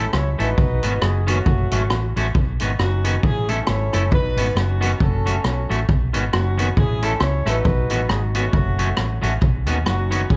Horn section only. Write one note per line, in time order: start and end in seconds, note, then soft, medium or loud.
0.00 0.54 C#4 medium
0.00 0.54 E4 medium
0.00 0.13 A4 medium
0.15 0.30 C#5 loud
0.31 0.39 C#5 medium
0.40 1.24 D#4 medium
0.40 1.24 F#4 medium
0.40 1.03 B4 loud
1.04 1.28 G#4 medium
1.30 2.13 A3 medium
1.30 2.13 C#4 medium
1.30 2.17 F#4 medium
2.80 3.21 C#4 medium
2.80 3.21 D#4 medium
2.80 3.21 F#4 medium
3.24 4.08 C#4 medium
3.24 3.69 E4 medium
3.24 3.49 G#4 loud
3.50 3.68 A4 medium
3.70 4.10 E4 medium
3.70 4.10 A4 medium
3.70 4.13 C#5 loud
4.14 4.57 D#4 medium
4.14 4.56 F#4 medium
4.14 4.54 B4 loud
4.58 4.98 C#4 medium
4.58 4.98 D#4 medium
4.58 5.00 F#4 medium
5.02 5.85 C#4 medium
5.02 5.45 F#4 medium
5.02 5.44 A4 medium
5.46 5.86 F#4 medium
5.46 5.86 A4 medium
5.46 5.77 C#5 medium
6.34 6.74 C#4 medium
6.34 6.74 D#4 medium
6.34 6.74 F#4 medium
6.79 7.62 C#4 medium
6.79 7.62 E4 medium
6.79 7.03 G#4 loud
7.03 7.21 A4 medium
7.21 7.47 C#5 loud
7.49 8.32 D#4 medium
7.49 8.32 F#4 medium
7.49 8.10 B4 loud
8.11 8.22 G#4 medium
8.36 9.20 A3 medium
8.36 9.20 C#4 medium
8.36 9.20 F#4 medium
9.87 10.28 C#4 medium
9.87 10.28 D#4 medium
9.87 10.27 F#4 medium
10.31 10.37 C#4 medium
10.31 10.37 E4 medium
10.31 10.37 G#4 loud